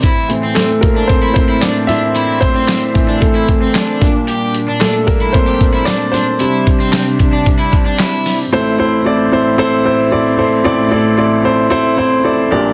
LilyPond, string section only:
\new Staff \with { instrumentName = "String section" } { \clef bass \time 4/4 \key a \phrygian \tempo 4 = 113 << { <a, c'>1~ | <a, c'>2.~ <a, c'>8 <bes, d'>8~ | <bes, d'>1 | <c d'>1 |
<a, c'>1~ | <a, c'>2.~ <a, c'>8 <bes, d'>8 | } \\ { e1~ | e2.~ e8 g8~ | g1~ | g1 |
e1~ | e2.~ e8 g8 | } >> }